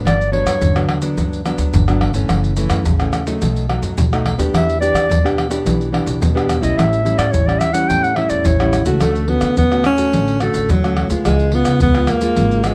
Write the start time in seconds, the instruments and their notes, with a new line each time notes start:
Already playing: nylon-string guitar F#3 B3 D4
0.05 upright bass G1, nylon-string guitar G2, clarinet D5, pandeiro, tamborim, maracas, surdo
0.21 pandeiro, maracas
0.32 nylon-string guitar F#3 B3 D4, clarinet C#5, pandeiro
0.46 upright bass G2, pandeiro, tamborim, maracas, surdo
0.61 upright bass G1, nylon-string guitar D3, pandeiro, maracas, surdo
0.76 nylon-string guitar F#3 B3 D4, pandeiro, tamborim, maracas
0.89 pandeiro, tamborim
1.02 nylon-string guitar F#3 B3 D4, pandeiro, maracas, surdo
1.17 upright bass D2, nylon-string guitar G2, pandeiro, maracas, surdo
1.33 pandeiro, maracas
1.46 nylon-string guitar F#3 B3 D4, pandeiro, tamborim, maracas
1.58 upright bass D2, pandeiro, maracas, surdo
1.74 upright bass G1, nylon-string guitar D3, pandeiro, maracas, surdo
1.88 nylon-string guitar F#3 B3 D4, pandeiro, tamborim, maracas
2.01 pandeiro, tamborim
2.14 upright bass G1, nylon-string guitar E3 A3 C#4, pandeiro, maracas, surdo
2.29 upright bass F#1, nylon-string guitar F#2, pandeiro, tamborim, maracas, surdo
2.44 pandeiro, maracas
2.57 nylon-string guitar E3 A3 C#4, pandeiro, maracas, surdo
2.70 upright bass F#2, pandeiro, tamborim, maracas, surdo
2.85 upright bass A1, nylon-string guitar C#3, pandeiro, maracas, surdo
3.00 nylon-string guitar E3 A3 C#4, pandeiro, tamborim, maracas
3.13 pandeiro, tamborim, maracas
3.27 nylon-string guitar F#3 A3 D#4, pandeiro, maracas, surdo
3.42 upright bass B1, nylon-string guitar B2, pandeiro, maracas, surdo
3.56 pandeiro, maracas
3.69 nylon-string guitar F#3 A3 D#4, pandeiro, tamborim
3.82 upright bass F#2, pandeiro, maracas, surdo
3.98 upright bass B1, pandeiro, maracas, surdo
4.13 nylon-string guitar F#3 A3 D#4, pandeiro, tamborim, maracas
4.26 pandeiro, tamborim
4.38 upright bass D#2, nylon-string guitar B3 D4 G4, pandeiro, maracas, surdo
4.54 upright bass E2, nylon-string guitar E3, clarinet E5, pandeiro, tamborim, maracas, surdo
4.69 pandeiro, maracas
4.81 nylon-string guitar B3 D4 G4, clarinet D5, pandeiro, maracas
4.94 upright bass E3, pandeiro, tamborim, maracas, surdo
5.10 upright bass E2, nylon-string guitar B2, pandeiro, maracas, surdo
5.24 nylon-string guitar B3 D4 G4, pandeiro, tamborim, maracas
5.38 pandeiro, tamborim
5.50 nylon-string guitar B3 D4 G4, pandeiro, maracas, surdo
5.65 upright bass B1, nylon-string guitar E3, pandeiro, maracas, surdo
5.81 pandeiro, maracas
5.92 nylon-string guitar B3 D4 G4, pandeiro, tamborim
6.06 upright bass B1, pandeiro, maracas, surdo
6.21 upright bass E2, nylon-string guitar B2, pandeiro, maracas, surdo
6.35 nylon-string guitar B3 D4 G4, pandeiro, tamborim, maracas
6.49 pandeiro, tamborim, maracas
6.61 upright bass B1, nylon-string guitar G3 C#4 E4, clarinet D#5, pandeiro, maracas, surdo
6.77 upright bass A1, nylon-string guitar A2, clarinet E5, pandeiro, tamborim, maracas, surdo
6.93 pandeiro, maracas
7.05 nylon-string guitar G3 C#4 E4, pandeiro, maracas
7.18 upright bass A2, clarinet D5, pandeiro, tamborim, maracas, surdo
7.32 upright bass A1, nylon-string guitar E3, clarinet C#5, pandeiro, maracas, surdo
7.47 nylon-string guitar G3 C#4 E4, clarinet D5, pandeiro, tamborim, maracas
7.59 clarinet E5, pandeiro, tamborim, maracas
7.73 nylon-string guitar G3 C#4 E4, clarinet F#5, pandeiro, maracas, surdo
7.88 upright bass E2, nylon-string guitar A2, clarinet G5, pandeiro, maracas, surdo
8.04 clarinet F#5, pandeiro, maracas
8.16 nylon-string guitar G3 C#4 E4, clarinet E5, pandeiro, tamborim
8.30 upright bass E2, clarinet D5, pandeiro, maracas, surdo
8.45 upright bass A1, nylon-string guitar E3, clarinet C#5, pandeiro, maracas, surdo
8.60 nylon-string guitar G3 C#4 E4, pandeiro, tamborim, maracas
8.73 pandeiro, tamborim, maracas
8.86 upright bass C#2, nylon-string guitar A3 C#4 F#4, pandeiro, maracas, surdo
9.01 upright bass D2, nylon-string guitar D3, alto saxophone A3, pandeiro, tamborim, maracas, surdo
9.15 pandeiro, maracas
9.28 nylon-string guitar A3 C#4 F#4, alto saxophone B3, pandeiro, surdo
9.41 upright bass D3, pandeiro, tamborim, maracas, surdo
9.57 upright bass D2, alto saxophone B3, pandeiro, maracas, surdo
9.72 nylon-string guitar A3 C#4 F#4, pandeiro, tamborim, maracas
9.84 alto saxophone C#4, pandeiro, tamborim, maracas
9.98 nylon-string guitar A3 C#4 F#4, pandeiro, maracas, surdo
10.13 upright bass A1, nylon-string guitar D3, pandeiro, maracas, surdo
10.28 pandeiro, maracas
10.40 alto saxophone A3, nylon-string guitar A3 C#4 F#4, pandeiro, tamborim, maracas
10.54 upright bass A1, pandeiro, maracas, surdo
10.69 upright bass D2, nylon-string guitar A2, alto saxophone F#3, pandeiro, maracas, surdo
10.84 nylon-string guitar A3 C#4 F#4, pandeiro, tamborim, maracas
10.97 pandeiro, tamborim
11.10 upright bass D2, nylon-string guitar G#3 B3 F4, pandeiro, maracas, surdo
11.25 upright bass C#2, nylon-string guitar C#3, alto saxophone G#3, pandeiro, tamborim, maracas, surdo
11.39 pandeiro, maracas
11.52 nylon-string guitar G#3 B3 F4, alto saxophone B3, pandeiro
11.65 upright bass C#3, pandeiro, tamborim, maracas, surdo
11.80 upright bass C#2, nylon-string guitar G#2, alto saxophone B3, pandeiro, maracas, surdo
11.95 nylon-string guitar G#3 B3 F4, pandeiro, tamborim, maracas
12.07 alto saxophone A#3, pandeiro, tamborim, maracas
12.21 nylon-string guitar G#3 F4, pandeiro, maracas, surdo
12.36 upright bass G#1, nylon-string guitar C#3, pandeiro, maracas, surdo
12.51 pandeiro, maracas
12.64 nylon-string guitar G#3 B3 F4, alto saxophone G#3, pandeiro, tamborim, maracas